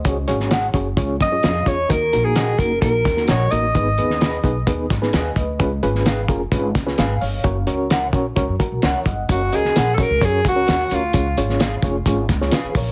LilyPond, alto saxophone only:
\new Staff \with { instrumentName = "Alto saxophone" } { \time 4/4 \key fis \major \tempo 4 = 130 r2 r8 dis''4 cis''8 | ais'8. gis'8. ais'8 ais'4 cis''8 dis''8~ | dis''4. r2 r8 | r1 |
r1 | fis'8 gis'8.~ gis'32 a'32 ais'8 gis'8 fis'4 eis'8~ | eis'8 r2. r8 | }